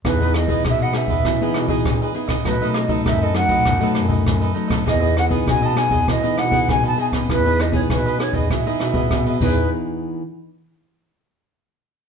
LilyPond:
<<
  \new Staff \with { instrumentName = "Flute" } { \time 4/4 \key e \major \tempo 4 = 99 b'8 dis''8 e''16 fis''16 e''4 r4. | b'8 dis''8 e''16 dis''16 fis''4 r4. | dis''8 fis''8 gis''16 a''16 gis''8 dis''8 fis''8 gis''16 a''16 gis''8 | b'8 dis''16 cis''16 b'8 cis''16 dis''16 e''4. b'8 |
r1 | }
  \new Staff \with { instrumentName = "Cavaquinho" } { \time 4/4 \key e \major <e' gis' b' dis''>16 <gis' b' dis''>16 r16 <gis' b' dis''>16 <e' gis' b' dis''>16 <gis' b' dis''>16 r16 <gis' b' dis''>16 <e' gis' b' dis''>16 <gis' b' dis''>8 <gis' b' dis''>8 <gis' b' dis''>16 <e' gis' b' dis''>16 <gis' b' dis''>16 | <dis' a' b' dis''>16 <a' b' dis''>16 r16 <a' b' dis''>16 <dis' a' b' dis''>16 <a' b' dis''>16 r16 <a' b' dis''>16 <dis' a' b' dis''>16 <a' b' dis''>8 <a' b' dis''>8 <a' b' dis''>16 <dis' a' b' dis''>16 <a' b' dis''>16 | <e' gis' b' dis''>16 <gis' b' dis''>16 r16 <gis' b' dis''>16 <e' gis' b' dis''>16 <gis' b' dis''>16 r16 <gis' b' dis''>16 <e' gis' b' dis''>16 <gis' b' dis''>8 <gis' b' dis''>8 <gis' b' dis''>16 <e' gis' b' dis''>16 <gis' b' dis''>16 | <e' gis' b' dis''>16 <gis' b' dis''>16 r16 <gis' b' dis''>16 <e' gis' b' dis''>16 <gis' b' dis''>16 r16 <gis' b' dis''>16 <e' gis' b' dis''>16 <gis' b' dis''>8 <gis' b' dis''>8 <gis' b' dis''>16 <e' gis' b' dis''>8 |
r1 | }
  \new Staff \with { instrumentName = "Nylon-string guitar" } { \time 4/4 \key e \major << { <b dis' gis'>16 <b dis' gis'>8 <b dis' gis'>8. <b dis' gis'>8 r16 <b dis' gis'>8 <b dis' gis'>8. <b dis' gis'>16 r16 | <fis a dis'>16 <fis a dis'>8 <fis a dis'>8. <fis a dis'>8. <fis a dis'>8 <fis a dis'>8. <fis a dis'>8 | <b dis' gis'>16 <b dis' gis'>8 <b dis' gis'>8. <b dis' gis'>8 r16 <b dis' gis'>8 <b dis' gis'>8. <b dis' gis'>8~ | <b dis' gis'>16 <b dis' gis'>8 <b dis' gis'>8. <b dis' gis'>8 r16 <b dis' gis'>8 <b gis'>8. <e b dis' gis'>8 |
r1 | } \\ { e4 b,4 e4 r4 | b,4 fis,4 b,4 fis,4 | e4 b,4 e4 b,4 | e4 b,4 r4 b,8 r8 |
r1 | } >> }
  \new Staff \with { instrumentName = "Bass clarinet" } { \clef bass \time 4/4 \key e \major e,4 b,8. e,16 b,16 r16 b,8 ais,8 r8 | b,4 fis,8. b,16 fis,16 r16 fis,8 fis,8 r8 | e,4 b,8. e,16 b,16 r16 b,8 b,8 r8 | e,4 b,8. e,16 b,16 r16 b,8 b,8 e,8 |
r1 | }
  \new DrumStaff \with { instrumentName = "Drums" } \drummode { \time 4/4 <hh bd ss>16 hh16 <hh ss>16 <hh bd>16 <hh bd ss>8 <hh ss>16 bd16 <hh bd ss>16 hh16 <hh ss>16 bd16 <hh bd ss>8 hh16 <hh bd ss>16 | <hh bd ss>16 hh16 <hh ss>16 <hh bd>16 <hh bd ss>8 <hh ss>16 <hh bd>16 <hh bd ss>8 <hh ss>16 bd16 <hh bd ss>16 hh16 hh16 <bd ss>16 | <hh bd ss>16 hh16 <hh ss>16 <hh bd>16 <hh bd ss>8 <hh ss>16 bd16 <hh bd ss>16 hh16 <hh ss>16 bd16 <hh bd ss>8 hh16 <hh bd ss>16 | <hh bd ss>16 hh16 <hh ss>16 <hh bd>16 <hh bd ss>8 <hh ss>16 <hh bd>16 <hh bd ss>8 <hh ss>16 bd16 <hh bd ss>16 hh16 <cymc bd>8 |
r4 r4 r4 r4 | }
>>